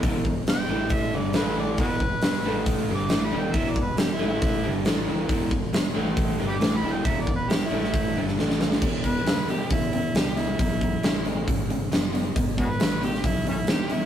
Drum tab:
CC |----------------|----------------|----------------|----------------|
HH |o---o---o---o---|o---o---o---o---|o---o---o---o---|o---o---o---o---|
SD |----o-------o---|----o-------o---|----o-------o---|----o-------o---|
BD |o-o-----o-------|o-o-----o-------|o-o-----o-------|o-o-----o-------|

CC |----------------|x---------------|----------------|----------------|
HH |o---o---o-------|--o-o-o-o-o-o-o-|o-o-o-o-o-o-o-o-|o-o-o-o-o-o-o-o-|
SD |----o--o---ooooo|----o-------o---|----o-------o---|----o--o----o---|
BD |o-o-----o-------|o-o-----o-------|o-o-----o-------|o-o-----o-------|